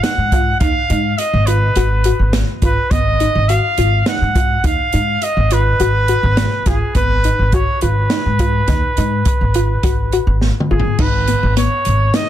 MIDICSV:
0, 0, Header, 1, 5, 480
1, 0, Start_track
1, 0, Tempo, 576923
1, 2424, Time_signature, 7, 2, 24, 8
1, 10228, End_track
2, 0, Start_track
2, 0, Title_t, "Trumpet"
2, 0, Program_c, 0, 56
2, 25, Note_on_c, 0, 78, 96
2, 496, Note_off_c, 0, 78, 0
2, 501, Note_on_c, 0, 77, 99
2, 986, Note_on_c, 0, 75, 83
2, 999, Note_off_c, 0, 77, 0
2, 1220, Note_on_c, 0, 71, 73
2, 1232, Note_off_c, 0, 75, 0
2, 1955, Note_off_c, 0, 71, 0
2, 2191, Note_on_c, 0, 71, 83
2, 2421, Note_on_c, 0, 75, 91
2, 2433, Note_off_c, 0, 71, 0
2, 2903, Note_on_c, 0, 77, 99
2, 2916, Note_off_c, 0, 75, 0
2, 3384, Note_off_c, 0, 77, 0
2, 3394, Note_on_c, 0, 78, 86
2, 3874, Note_on_c, 0, 77, 93
2, 3886, Note_off_c, 0, 78, 0
2, 4354, Note_on_c, 0, 75, 90
2, 4367, Note_off_c, 0, 77, 0
2, 4599, Note_on_c, 0, 71, 97
2, 4612, Note_off_c, 0, 75, 0
2, 5550, Note_on_c, 0, 68, 76
2, 5563, Note_off_c, 0, 71, 0
2, 5788, Note_off_c, 0, 68, 0
2, 5792, Note_on_c, 0, 71, 97
2, 6275, Note_on_c, 0, 73, 86
2, 6287, Note_off_c, 0, 71, 0
2, 6501, Note_off_c, 0, 73, 0
2, 6506, Note_on_c, 0, 71, 80
2, 8632, Note_off_c, 0, 71, 0
2, 8915, Note_on_c, 0, 68, 71
2, 9156, Note_on_c, 0, 71, 86
2, 9168, Note_off_c, 0, 68, 0
2, 9627, Note_off_c, 0, 71, 0
2, 9632, Note_on_c, 0, 73, 82
2, 10113, Note_on_c, 0, 75, 88
2, 10126, Note_off_c, 0, 73, 0
2, 10228, Note_off_c, 0, 75, 0
2, 10228, End_track
3, 0, Start_track
3, 0, Title_t, "Synth arpeggio sound"
3, 0, Program_c, 1, 84
3, 35, Note_on_c, 1, 63, 75
3, 226, Note_off_c, 1, 63, 0
3, 277, Note_on_c, 1, 65, 72
3, 467, Note_off_c, 1, 65, 0
3, 511, Note_on_c, 1, 63, 79
3, 703, Note_off_c, 1, 63, 0
3, 753, Note_on_c, 1, 63, 76
3, 1138, Note_off_c, 1, 63, 0
3, 1232, Note_on_c, 1, 65, 71
3, 1423, Note_off_c, 1, 65, 0
3, 1471, Note_on_c, 1, 66, 99
3, 1662, Note_off_c, 1, 66, 0
3, 1710, Note_on_c, 1, 66, 66
3, 2096, Note_off_c, 1, 66, 0
3, 2190, Note_on_c, 1, 65, 75
3, 2382, Note_off_c, 1, 65, 0
3, 2432, Note_on_c, 1, 59, 78
3, 2623, Note_off_c, 1, 59, 0
3, 2667, Note_on_c, 1, 63, 71
3, 2860, Note_off_c, 1, 63, 0
3, 2911, Note_on_c, 1, 66, 74
3, 3102, Note_off_c, 1, 66, 0
3, 3150, Note_on_c, 1, 65, 86
3, 3342, Note_off_c, 1, 65, 0
3, 3392, Note_on_c, 1, 63, 75
3, 3583, Note_off_c, 1, 63, 0
3, 3625, Note_on_c, 1, 65, 69
3, 3819, Note_off_c, 1, 65, 0
3, 3870, Note_on_c, 1, 63, 82
3, 4062, Note_off_c, 1, 63, 0
3, 4107, Note_on_c, 1, 63, 73
3, 4494, Note_off_c, 1, 63, 0
3, 4590, Note_on_c, 1, 65, 64
3, 4782, Note_off_c, 1, 65, 0
3, 4830, Note_on_c, 1, 66, 81
3, 5022, Note_off_c, 1, 66, 0
3, 5068, Note_on_c, 1, 66, 78
3, 5455, Note_off_c, 1, 66, 0
3, 5552, Note_on_c, 1, 65, 79
3, 5744, Note_off_c, 1, 65, 0
3, 5789, Note_on_c, 1, 59, 80
3, 5982, Note_off_c, 1, 59, 0
3, 6031, Note_on_c, 1, 63, 70
3, 6223, Note_off_c, 1, 63, 0
3, 6271, Note_on_c, 1, 66, 77
3, 6463, Note_off_c, 1, 66, 0
3, 6510, Note_on_c, 1, 65, 78
3, 6702, Note_off_c, 1, 65, 0
3, 6749, Note_on_c, 1, 63, 72
3, 6942, Note_off_c, 1, 63, 0
3, 6988, Note_on_c, 1, 65, 66
3, 7181, Note_off_c, 1, 65, 0
3, 7231, Note_on_c, 1, 63, 70
3, 7423, Note_off_c, 1, 63, 0
3, 7472, Note_on_c, 1, 63, 75
3, 7858, Note_off_c, 1, 63, 0
3, 7950, Note_on_c, 1, 65, 74
3, 8142, Note_off_c, 1, 65, 0
3, 8188, Note_on_c, 1, 66, 89
3, 8381, Note_off_c, 1, 66, 0
3, 8430, Note_on_c, 1, 66, 77
3, 8817, Note_off_c, 1, 66, 0
3, 8911, Note_on_c, 1, 65, 80
3, 9102, Note_off_c, 1, 65, 0
3, 9149, Note_on_c, 1, 63, 88
3, 9341, Note_off_c, 1, 63, 0
3, 9387, Note_on_c, 1, 59, 67
3, 9580, Note_off_c, 1, 59, 0
3, 9625, Note_on_c, 1, 59, 78
3, 10013, Note_off_c, 1, 59, 0
3, 10105, Note_on_c, 1, 63, 73
3, 10228, Note_off_c, 1, 63, 0
3, 10228, End_track
4, 0, Start_track
4, 0, Title_t, "Upright bass"
4, 0, Program_c, 2, 32
4, 146, Note_on_c, 2, 44, 61
4, 424, Note_off_c, 2, 44, 0
4, 505, Note_on_c, 2, 39, 79
4, 598, Note_off_c, 2, 39, 0
4, 748, Note_on_c, 2, 44, 74
4, 933, Note_off_c, 2, 44, 0
4, 1110, Note_on_c, 2, 32, 85
4, 1386, Note_off_c, 2, 32, 0
4, 1464, Note_on_c, 2, 32, 72
4, 1743, Note_off_c, 2, 32, 0
4, 1825, Note_on_c, 2, 32, 75
4, 2010, Note_off_c, 2, 32, 0
4, 2180, Note_on_c, 2, 32, 81
4, 2275, Note_off_c, 2, 32, 0
4, 2420, Note_on_c, 2, 32, 82
4, 2701, Note_off_c, 2, 32, 0
4, 2790, Note_on_c, 2, 32, 82
4, 2973, Note_off_c, 2, 32, 0
4, 3143, Note_on_c, 2, 32, 69
4, 3329, Note_off_c, 2, 32, 0
4, 3505, Note_on_c, 2, 44, 70
4, 3784, Note_off_c, 2, 44, 0
4, 3858, Note_on_c, 2, 39, 77
4, 3953, Note_off_c, 2, 39, 0
4, 4106, Note_on_c, 2, 44, 74
4, 4291, Note_off_c, 2, 44, 0
4, 4465, Note_on_c, 2, 32, 81
4, 4744, Note_off_c, 2, 32, 0
4, 4823, Note_on_c, 2, 32, 74
4, 5103, Note_off_c, 2, 32, 0
4, 5184, Note_on_c, 2, 32, 82
4, 5370, Note_off_c, 2, 32, 0
4, 5541, Note_on_c, 2, 32, 75
4, 5635, Note_off_c, 2, 32, 0
4, 5784, Note_on_c, 2, 32, 88
4, 6063, Note_off_c, 2, 32, 0
4, 6149, Note_on_c, 2, 32, 75
4, 6334, Note_off_c, 2, 32, 0
4, 6510, Note_on_c, 2, 32, 70
4, 6694, Note_off_c, 2, 32, 0
4, 6869, Note_on_c, 2, 44, 68
4, 7147, Note_off_c, 2, 44, 0
4, 7220, Note_on_c, 2, 39, 89
4, 7315, Note_off_c, 2, 39, 0
4, 7467, Note_on_c, 2, 44, 81
4, 7652, Note_off_c, 2, 44, 0
4, 7829, Note_on_c, 2, 32, 69
4, 8106, Note_off_c, 2, 32, 0
4, 8182, Note_on_c, 2, 32, 70
4, 8462, Note_off_c, 2, 32, 0
4, 8544, Note_on_c, 2, 32, 78
4, 8730, Note_off_c, 2, 32, 0
4, 8909, Note_on_c, 2, 32, 73
4, 9000, Note_off_c, 2, 32, 0
4, 9141, Note_on_c, 2, 32, 87
4, 9421, Note_off_c, 2, 32, 0
4, 9510, Note_on_c, 2, 32, 84
4, 9693, Note_off_c, 2, 32, 0
4, 9869, Note_on_c, 2, 32, 78
4, 10053, Note_off_c, 2, 32, 0
4, 10228, End_track
5, 0, Start_track
5, 0, Title_t, "Drums"
5, 29, Note_on_c, 9, 38, 82
5, 29, Note_on_c, 9, 42, 76
5, 112, Note_off_c, 9, 38, 0
5, 112, Note_off_c, 9, 42, 0
5, 266, Note_on_c, 9, 36, 75
5, 266, Note_on_c, 9, 42, 61
5, 349, Note_off_c, 9, 36, 0
5, 349, Note_off_c, 9, 42, 0
5, 503, Note_on_c, 9, 42, 81
5, 505, Note_on_c, 9, 36, 92
5, 586, Note_off_c, 9, 42, 0
5, 588, Note_off_c, 9, 36, 0
5, 747, Note_on_c, 9, 42, 61
5, 830, Note_off_c, 9, 42, 0
5, 984, Note_on_c, 9, 42, 76
5, 1068, Note_off_c, 9, 42, 0
5, 1222, Note_on_c, 9, 42, 60
5, 1305, Note_off_c, 9, 42, 0
5, 1460, Note_on_c, 9, 42, 67
5, 1544, Note_off_c, 9, 42, 0
5, 1698, Note_on_c, 9, 42, 55
5, 1781, Note_off_c, 9, 42, 0
5, 1939, Note_on_c, 9, 38, 104
5, 1939, Note_on_c, 9, 42, 75
5, 2022, Note_off_c, 9, 38, 0
5, 2022, Note_off_c, 9, 42, 0
5, 2179, Note_on_c, 9, 42, 50
5, 2180, Note_on_c, 9, 36, 73
5, 2262, Note_off_c, 9, 42, 0
5, 2264, Note_off_c, 9, 36, 0
5, 2421, Note_on_c, 9, 36, 103
5, 2421, Note_on_c, 9, 42, 69
5, 2504, Note_off_c, 9, 36, 0
5, 2504, Note_off_c, 9, 42, 0
5, 2663, Note_on_c, 9, 42, 60
5, 2746, Note_off_c, 9, 42, 0
5, 2903, Note_on_c, 9, 42, 64
5, 2986, Note_off_c, 9, 42, 0
5, 3141, Note_on_c, 9, 42, 56
5, 3224, Note_off_c, 9, 42, 0
5, 3379, Note_on_c, 9, 38, 102
5, 3379, Note_on_c, 9, 42, 68
5, 3462, Note_off_c, 9, 38, 0
5, 3462, Note_off_c, 9, 42, 0
5, 3621, Note_on_c, 9, 36, 82
5, 3623, Note_on_c, 9, 42, 60
5, 3704, Note_off_c, 9, 36, 0
5, 3706, Note_off_c, 9, 42, 0
5, 3859, Note_on_c, 9, 42, 75
5, 3860, Note_on_c, 9, 36, 85
5, 3943, Note_off_c, 9, 42, 0
5, 3944, Note_off_c, 9, 36, 0
5, 4097, Note_on_c, 9, 42, 58
5, 4181, Note_off_c, 9, 42, 0
5, 4340, Note_on_c, 9, 42, 75
5, 4423, Note_off_c, 9, 42, 0
5, 4580, Note_on_c, 9, 42, 58
5, 4664, Note_off_c, 9, 42, 0
5, 4823, Note_on_c, 9, 42, 64
5, 4906, Note_off_c, 9, 42, 0
5, 5059, Note_on_c, 9, 42, 57
5, 5143, Note_off_c, 9, 42, 0
5, 5300, Note_on_c, 9, 38, 105
5, 5300, Note_on_c, 9, 42, 84
5, 5384, Note_off_c, 9, 38, 0
5, 5384, Note_off_c, 9, 42, 0
5, 5539, Note_on_c, 9, 38, 29
5, 5539, Note_on_c, 9, 42, 56
5, 5542, Note_on_c, 9, 36, 73
5, 5622, Note_off_c, 9, 38, 0
5, 5622, Note_off_c, 9, 42, 0
5, 5625, Note_off_c, 9, 36, 0
5, 5780, Note_on_c, 9, 42, 77
5, 5781, Note_on_c, 9, 36, 96
5, 5863, Note_off_c, 9, 42, 0
5, 5865, Note_off_c, 9, 36, 0
5, 6023, Note_on_c, 9, 42, 68
5, 6106, Note_off_c, 9, 42, 0
5, 6259, Note_on_c, 9, 42, 61
5, 6262, Note_on_c, 9, 36, 89
5, 6342, Note_off_c, 9, 42, 0
5, 6345, Note_off_c, 9, 36, 0
5, 6499, Note_on_c, 9, 42, 51
5, 6582, Note_off_c, 9, 42, 0
5, 6738, Note_on_c, 9, 38, 92
5, 6738, Note_on_c, 9, 42, 61
5, 6821, Note_off_c, 9, 38, 0
5, 6821, Note_off_c, 9, 42, 0
5, 6981, Note_on_c, 9, 42, 59
5, 6982, Note_on_c, 9, 36, 70
5, 7064, Note_off_c, 9, 42, 0
5, 7065, Note_off_c, 9, 36, 0
5, 7218, Note_on_c, 9, 38, 34
5, 7218, Note_on_c, 9, 42, 65
5, 7222, Note_on_c, 9, 36, 93
5, 7301, Note_off_c, 9, 38, 0
5, 7301, Note_off_c, 9, 42, 0
5, 7305, Note_off_c, 9, 36, 0
5, 7461, Note_on_c, 9, 42, 51
5, 7545, Note_off_c, 9, 42, 0
5, 7699, Note_on_c, 9, 42, 76
5, 7702, Note_on_c, 9, 36, 91
5, 7782, Note_off_c, 9, 42, 0
5, 7785, Note_off_c, 9, 36, 0
5, 7939, Note_on_c, 9, 42, 57
5, 8022, Note_off_c, 9, 42, 0
5, 8180, Note_on_c, 9, 42, 66
5, 8182, Note_on_c, 9, 36, 82
5, 8264, Note_off_c, 9, 42, 0
5, 8265, Note_off_c, 9, 36, 0
5, 8422, Note_on_c, 9, 42, 45
5, 8506, Note_off_c, 9, 42, 0
5, 8665, Note_on_c, 9, 38, 53
5, 8748, Note_off_c, 9, 38, 0
5, 8822, Note_on_c, 9, 47, 54
5, 8905, Note_off_c, 9, 47, 0
5, 8982, Note_on_c, 9, 43, 77
5, 9065, Note_off_c, 9, 43, 0
5, 9140, Note_on_c, 9, 49, 91
5, 9141, Note_on_c, 9, 36, 112
5, 9223, Note_off_c, 9, 49, 0
5, 9225, Note_off_c, 9, 36, 0
5, 9380, Note_on_c, 9, 42, 63
5, 9464, Note_off_c, 9, 42, 0
5, 9623, Note_on_c, 9, 38, 27
5, 9623, Note_on_c, 9, 42, 76
5, 9707, Note_off_c, 9, 38, 0
5, 9707, Note_off_c, 9, 42, 0
5, 9859, Note_on_c, 9, 42, 51
5, 9942, Note_off_c, 9, 42, 0
5, 10098, Note_on_c, 9, 38, 102
5, 10098, Note_on_c, 9, 42, 76
5, 10181, Note_off_c, 9, 38, 0
5, 10181, Note_off_c, 9, 42, 0
5, 10228, End_track
0, 0, End_of_file